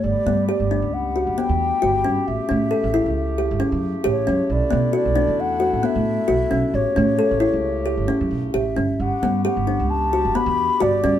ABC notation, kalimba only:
X:1
M:5/4
L:1/8
Q:1/4=134
K:Glyd
V:1 name="Kalimba"
z B, G D2 F B,2 F C | z C A E2 G C2 G C | z B, F D2 F B,2 F C | z C A E2 G C2 G C |
z B, G D2 F B,2 F C |]